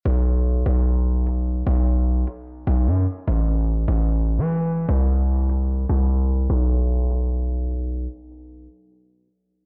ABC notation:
X:1
M:4/4
L:1/16
Q:1/4=149
K:Ador
V:1 name="808-style bass" clef=bass
B,,,6 B,,,8- B,,,2 | B,,,6 z4 B,,,2 F,,2 z2 | A,,,6 A,,,4- A,,, E,4- E, | C,,8- C,,2 C,,6 |
B,,,16 | z16 |]